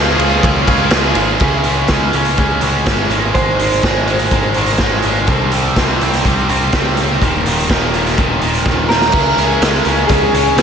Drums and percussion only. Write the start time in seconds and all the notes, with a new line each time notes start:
0.19 ride
0.43 kick, ride
0.67 kick, ride
0.90 snare, ride
1.15 ride
1.40 kick, crash
1.64 closed hi-hat
1.88 kick, snare, closed hi-hat
2.13 closed hi-hat
2.25 closed hi-hat
2.37 kick, closed hi-hat
2.61 closed hi-hat
2.86 kick, snare, closed hi-hat
3.10 closed hi-hat
3.35 kick, closed hi-hat
3.59 closed hi-hat
3.71 closed hi-hat
3.83 kick, snare, closed hi-hat
4.07 closed hi-hat
4.19 closed hi-hat
4.31 kick, closed hi-hat
4.54 closed hi-hat
4.66 closed hi-hat
4.77 kick, snare, closed hi-hat
5.02 closed hi-hat
5.27 kick, closed hi-hat
5.51 closed hi-hat
5.76 kick, snare, closed hi-hat
6.01 closed hi-hat
6.13 snare, closed hi-hat
6.25 kick, closed hi-hat
6.49 closed hi-hat
6.72 kick, snare, closed hi-hat
6.97 closed hi-hat
7.22 kick, closed hi-hat
7.46 closed hi-hat
7.59 closed hi-hat
7.70 kick, snare, closed hi-hat
7.94 closed hi-hat
8.06 snare, closed hi-hat
8.18 kick, closed hi-hat
8.41 closed hi-hat
8.53 closed hi-hat
8.66 kick, snare
8.90 snare
9.01 snare
9.12 kick, crash
9.38 closed hi-hat
9.62 snare, closed hi-hat
9.74 snare
9.85 closed hi-hat
10.09 kick, closed hi-hat
10.35 closed hi-hat
10.58 snare, closed hi-hat